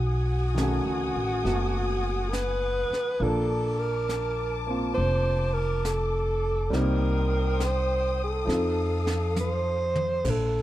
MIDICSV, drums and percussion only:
0, 0, Header, 1, 2, 480
1, 0, Start_track
1, 0, Key_signature, -2, "major"
1, 0, Tempo, 879765
1, 1749, Time_signature, 4, 2, 24, 8
1, 5795, End_track
2, 0, Start_track
2, 0, Title_t, "Drums"
2, 313, Note_on_c, 9, 38, 37
2, 313, Note_on_c, 9, 44, 38
2, 368, Note_off_c, 9, 38, 0
2, 368, Note_off_c, 9, 44, 0
2, 795, Note_on_c, 9, 25, 27
2, 795, Note_on_c, 9, 38, 22
2, 849, Note_off_c, 9, 38, 0
2, 1272, Note_on_c, 9, 38, 39
2, 1272, Note_on_c, 9, 44, 44
2, 1327, Note_off_c, 9, 38, 0
2, 1327, Note_off_c, 9, 44, 0
2, 1599, Note_on_c, 9, 38, 19
2, 1653, Note_off_c, 9, 38, 0
2, 1759, Note_off_c, 9, 25, 0
2, 1759, Note_on_c, 9, 25, 35
2, 2233, Note_on_c, 9, 38, 34
2, 2233, Note_on_c, 9, 44, 42
2, 2287, Note_off_c, 9, 38, 0
2, 2287, Note_off_c, 9, 44, 0
2, 2712, Note_off_c, 9, 25, 0
2, 2712, Note_on_c, 9, 25, 26
2, 3191, Note_on_c, 9, 38, 40
2, 3191, Note_on_c, 9, 44, 50
2, 3246, Note_off_c, 9, 38, 0
2, 3246, Note_off_c, 9, 44, 0
2, 3672, Note_off_c, 9, 25, 0
2, 3672, Note_on_c, 9, 25, 27
2, 3672, Note_on_c, 9, 38, 27
2, 3727, Note_off_c, 9, 38, 0
2, 4148, Note_on_c, 9, 38, 36
2, 4148, Note_on_c, 9, 44, 42
2, 4202, Note_off_c, 9, 38, 0
2, 4202, Note_off_c, 9, 44, 0
2, 4633, Note_on_c, 9, 38, 31
2, 4687, Note_off_c, 9, 38, 0
2, 4948, Note_on_c, 9, 38, 47
2, 5002, Note_off_c, 9, 38, 0
2, 5109, Note_on_c, 9, 44, 50
2, 5109, Note_on_c, 9, 48, 46
2, 5163, Note_off_c, 9, 44, 0
2, 5163, Note_off_c, 9, 48, 0
2, 5432, Note_on_c, 9, 47, 59
2, 5486, Note_off_c, 9, 47, 0
2, 5590, Note_off_c, 9, 25, 0
2, 5590, Note_on_c, 9, 25, 37
2, 5590, Note_on_c, 9, 38, 29
2, 5590, Note_on_c, 9, 49, 62
2, 5592, Note_on_c, 9, 36, 63
2, 5645, Note_off_c, 9, 38, 0
2, 5645, Note_off_c, 9, 49, 0
2, 5647, Note_off_c, 9, 36, 0
2, 5795, Note_off_c, 9, 25, 0
2, 5795, End_track
0, 0, End_of_file